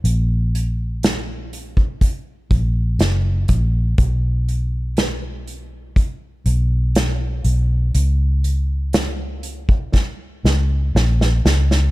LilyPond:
<<
  \new Staff \with { instrumentName = "Fingered electric bass" } { \clef bass \time 4/4 \key ces \lydian \tempo 4 = 60 bes,,2~ bes,,8 bes,,8 ges,,8 bes,,8 | ces,2~ ces,8 ces,4 ces,8 | des,2~ des,8 des,8 bes,,8 des,8 | }
  \new DrumStaff \with { instrumentName = "Drums" } \drummode { \time 4/4 hh8 hh8 <hh sn>8 hh16 bd16 <hh bd>8 <hh bd>8 <hh sn>8 <hh bd>8 | <hh bd>8 hh8 <hh sn>8 hh8 <hh bd>8 hh8 <hh sn>8 hh8 | hh8 hh8 <hh sn>8 hh16 bd16 <bd sn>8 sn8 sn16 sn16 sn16 sn16 | }
>>